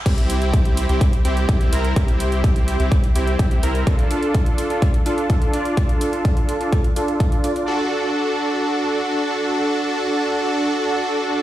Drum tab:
CC |x---------------|----------------|----------------|----------------|
HH |xxxxxxxxxxxxxxxx|xxxxxxxxxxxxxxxx|xxxxxxxxxxxxxxxx|xxxxxxxxxxxxxxxx|
BD |o---o---o---o---|o---o---o---o---|o---o---o---o---|o---o---o---o---|

CC |----------------|----------------|
HH |----------------|----------------|
BD |----------------|----------------|